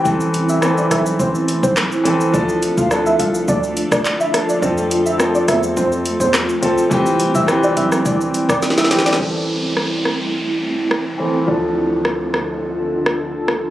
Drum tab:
HH |----x-------x-------x-------x---|----x-------x-------x-------x---|----x-------x-------x-------x---|----x-------x-------x-------x---|
SH |x-x-x-x-x-x-x-x-x-x-x-x-x-x-x-x-|x-x-x-x-x-x-x-x-x-x-x-x-x-x-x-x-|x-x-x-x-x-x-x-x-x-x-x-x-x-x-x-x-|x-x-x-x-x-x-x-x-x-x-x-x-x-x-x-x-|
CP |------------------------x-------|------------------------x-------|------------------------x-------|--------------------------------|
SD |--------r---r-----------r-------|--------r-------------r-----r---|--------r---r-----------r-------|--------r-----r-------r-oooooooo|
BD |o---------------o-----o---------|o-----o---------o-----o---------|o---------------o-----o---------|o-----o---------o-----o---------|

HH |--------------------------------|--------------------------------|
SH |--------------------------------|--------------------------------|
CP |--------------------------------|--------------------------------|
SD |--------r---r-----------r-------|--------r---r---------r-----r---|
BD |--------------------------------|--------------------------------|